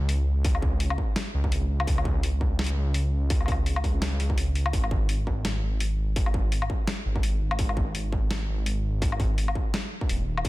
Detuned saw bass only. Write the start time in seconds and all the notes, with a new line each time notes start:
Already playing: C#2
1.34 C#2
1.69 C#2
1.87 C#2
2.23 C#2
2.77 C#2
3.84 C#2
4.20 C#2
4.73 G#1
5.09 G#1
5.63 G#1
7.05 G#1
7.41 G#1
7.59 G#1
7.95 G#1
8.48 G#1
10.09 D#1
10.45 C#2